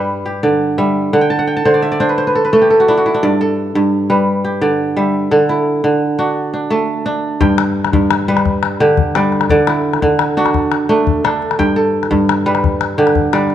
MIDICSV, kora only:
0, 0, Header, 1, 2, 480
1, 0, Start_track
1, 0, Key_signature, 1, "major"
1, 0, Tempo, 348635
1, 1554, Time_signature, 12, 3, 24, 8
1, 18653, End_track
2, 0, Start_track
2, 0, Title_t, "Kora"
2, 0, Program_c, 0, 46
2, 0, Note_on_c, 0, 43, 69
2, 0, Note_on_c, 0, 55, 74
2, 0, Note_on_c, 0, 57, 68
2, 0, Note_on_c, 0, 62, 69
2, 0, Note_on_c, 0, 69, 59
2, 0, Note_on_c, 0, 71, 60
2, 0, Note_on_c, 0, 74, 65
2, 205, Note_off_c, 0, 74, 0
2, 353, Note_on_c, 0, 67, 57
2, 463, Note_off_c, 0, 57, 0
2, 507, Note_off_c, 0, 62, 0
2, 593, Note_on_c, 0, 50, 77
2, 594, Note_on_c, 0, 74, 64
2, 664, Note_off_c, 0, 55, 0
2, 734, Note_off_c, 0, 69, 0
2, 1074, Note_on_c, 0, 76, 60
2, 1076, Note_on_c, 0, 55, 74
2, 1543, Note_off_c, 0, 50, 0
2, 1559, Note_on_c, 0, 50, 77
2, 1560, Note_on_c, 0, 78, 62
2, 1568, Note_off_c, 0, 71, 0
2, 1624, Note_off_c, 0, 43, 0
2, 1624, Note_off_c, 0, 55, 0
2, 1642, Note_off_c, 0, 67, 0
2, 1670, Note_on_c, 0, 79, 58
2, 1791, Note_on_c, 0, 81, 64
2, 1905, Note_off_c, 0, 78, 0
2, 1911, Note_on_c, 0, 78, 59
2, 1993, Note_off_c, 0, 79, 0
2, 2029, Note_on_c, 0, 79, 60
2, 2120, Note_off_c, 0, 74, 0
2, 2150, Note_off_c, 0, 81, 0
2, 2156, Note_on_c, 0, 81, 63
2, 2260, Note_off_c, 0, 50, 0
2, 2277, Note_on_c, 0, 50, 71
2, 2277, Note_on_c, 0, 72, 65
2, 2396, Note_on_c, 0, 74, 63
2, 2497, Note_off_c, 0, 76, 0
2, 2511, Note_on_c, 0, 76, 67
2, 2633, Note_off_c, 0, 74, 0
2, 2638, Note_on_c, 0, 74, 65
2, 2747, Note_off_c, 0, 72, 0
2, 2753, Note_on_c, 0, 72, 66
2, 2754, Note_on_c, 0, 62, 73
2, 2879, Note_on_c, 0, 71, 65
2, 2993, Note_off_c, 0, 72, 0
2, 2999, Note_on_c, 0, 72, 65
2, 3120, Note_off_c, 0, 71, 0
2, 3126, Note_on_c, 0, 71, 60
2, 3239, Note_off_c, 0, 78, 0
2, 3240, Note_on_c, 0, 69, 62
2, 3312, Note_off_c, 0, 79, 0
2, 3353, Note_off_c, 0, 81, 0
2, 3362, Note_off_c, 0, 71, 0
2, 3368, Note_on_c, 0, 71, 59
2, 3450, Note_off_c, 0, 72, 0
2, 3474, Note_off_c, 0, 69, 0
2, 3480, Note_on_c, 0, 57, 75
2, 3480, Note_on_c, 0, 69, 69
2, 3600, Note_on_c, 0, 67, 64
2, 3717, Note_off_c, 0, 69, 0
2, 3722, Note_on_c, 0, 69, 63
2, 3853, Note_on_c, 0, 66, 61
2, 3935, Note_off_c, 0, 67, 0
2, 3935, Note_off_c, 0, 76, 0
2, 3963, Note_off_c, 0, 62, 0
2, 3969, Note_on_c, 0, 62, 72
2, 3971, Note_on_c, 0, 64, 64
2, 4089, Note_off_c, 0, 66, 0
2, 4094, Note_on_c, 0, 66, 60
2, 4164, Note_off_c, 0, 74, 0
2, 4205, Note_off_c, 0, 64, 0
2, 4210, Note_on_c, 0, 64, 62
2, 4323, Note_off_c, 0, 62, 0
2, 4329, Note_on_c, 0, 62, 65
2, 4446, Note_on_c, 0, 43, 79
2, 4446, Note_on_c, 0, 74, 68
2, 4504, Note_off_c, 0, 50, 0
2, 4528, Note_off_c, 0, 66, 0
2, 4687, Note_off_c, 0, 69, 0
2, 4692, Note_on_c, 0, 69, 65
2, 5060, Note_off_c, 0, 71, 0
2, 5151, Note_off_c, 0, 43, 0
2, 5168, Note_on_c, 0, 43, 72
2, 5641, Note_on_c, 0, 55, 77
2, 5641, Note_on_c, 0, 71, 60
2, 5971, Note_off_c, 0, 74, 0
2, 6119, Note_on_c, 0, 67, 58
2, 6230, Note_off_c, 0, 57, 0
2, 6354, Note_on_c, 0, 50, 71
2, 6357, Note_on_c, 0, 74, 58
2, 6368, Note_off_c, 0, 64, 0
2, 6425, Note_off_c, 0, 55, 0
2, 6506, Note_off_c, 0, 69, 0
2, 6641, Note_off_c, 0, 62, 0
2, 6836, Note_on_c, 0, 55, 69
2, 6842, Note_on_c, 0, 76, 60
2, 7302, Note_off_c, 0, 50, 0
2, 7315, Note_on_c, 0, 69, 63
2, 7317, Note_on_c, 0, 50, 74
2, 7334, Note_off_c, 0, 71, 0
2, 7386, Note_off_c, 0, 43, 0
2, 7386, Note_off_c, 0, 55, 0
2, 7562, Note_on_c, 0, 64, 61
2, 7883, Note_off_c, 0, 74, 0
2, 8023, Note_off_c, 0, 50, 0
2, 8040, Note_on_c, 0, 50, 76
2, 8064, Note_off_c, 0, 67, 0
2, 8265, Note_off_c, 0, 76, 0
2, 8517, Note_on_c, 0, 62, 67
2, 8518, Note_on_c, 0, 66, 62
2, 8993, Note_off_c, 0, 62, 0
2, 8999, Note_on_c, 0, 62, 54
2, 9129, Note_off_c, 0, 69, 0
2, 9231, Note_on_c, 0, 57, 75
2, 9235, Note_on_c, 0, 69, 64
2, 9710, Note_off_c, 0, 62, 0
2, 9715, Note_on_c, 0, 62, 70
2, 9719, Note_off_c, 0, 64, 0
2, 10195, Note_on_c, 0, 79, 67
2, 10196, Note_on_c, 0, 43, 79
2, 10268, Note_off_c, 0, 50, 0
2, 10278, Note_off_c, 0, 66, 0
2, 10905, Note_off_c, 0, 43, 0
2, 10921, Note_on_c, 0, 43, 74
2, 11050, Note_off_c, 0, 69, 0
2, 11403, Note_on_c, 0, 55, 76
2, 11403, Note_on_c, 0, 71, 65
2, 11478, Note_off_c, 0, 79, 0
2, 11981, Note_off_c, 0, 57, 0
2, 12028, Note_off_c, 0, 62, 0
2, 12120, Note_on_c, 0, 50, 80
2, 12121, Note_on_c, 0, 67, 62
2, 12187, Note_off_c, 0, 55, 0
2, 12602, Note_on_c, 0, 55, 67
2, 12607, Note_on_c, 0, 74, 62
2, 13070, Note_off_c, 0, 50, 0
2, 13077, Note_off_c, 0, 74, 0
2, 13082, Note_on_c, 0, 74, 71
2, 13085, Note_on_c, 0, 50, 83
2, 13096, Note_off_c, 0, 71, 0
2, 13146, Note_off_c, 0, 43, 0
2, 13146, Note_off_c, 0, 55, 0
2, 13317, Note_on_c, 0, 64, 60
2, 13782, Note_off_c, 0, 50, 0
2, 13799, Note_on_c, 0, 50, 73
2, 14065, Note_off_c, 0, 67, 0
2, 14277, Note_on_c, 0, 62, 73
2, 14282, Note_on_c, 0, 66, 68
2, 14608, Note_off_c, 0, 74, 0
2, 14989, Note_off_c, 0, 62, 0
2, 14995, Note_on_c, 0, 57, 79
2, 14995, Note_on_c, 0, 62, 69
2, 15475, Note_off_c, 0, 64, 0
2, 15476, Note_off_c, 0, 62, 0
2, 15481, Note_on_c, 0, 62, 74
2, 15482, Note_on_c, 0, 69, 66
2, 15955, Note_on_c, 0, 43, 79
2, 15958, Note_on_c, 0, 79, 70
2, 16024, Note_off_c, 0, 50, 0
2, 16038, Note_off_c, 0, 66, 0
2, 16187, Note_off_c, 0, 69, 0
2, 16193, Note_on_c, 0, 69, 67
2, 16652, Note_off_c, 0, 43, 0
2, 16669, Note_on_c, 0, 43, 79
2, 17155, Note_on_c, 0, 55, 79
2, 17156, Note_on_c, 0, 71, 65
2, 17241, Note_off_c, 0, 79, 0
2, 17745, Note_off_c, 0, 57, 0
2, 17794, Note_off_c, 0, 62, 0
2, 17871, Note_on_c, 0, 50, 78
2, 17874, Note_on_c, 0, 67, 65
2, 17944, Note_off_c, 0, 55, 0
2, 18007, Note_off_c, 0, 69, 0
2, 18353, Note_on_c, 0, 55, 76
2, 18355, Note_on_c, 0, 74, 58
2, 18653, Note_off_c, 0, 43, 0
2, 18653, Note_off_c, 0, 50, 0
2, 18653, Note_off_c, 0, 55, 0
2, 18653, Note_off_c, 0, 67, 0
2, 18653, Note_off_c, 0, 71, 0
2, 18653, Note_off_c, 0, 74, 0
2, 18653, End_track
0, 0, End_of_file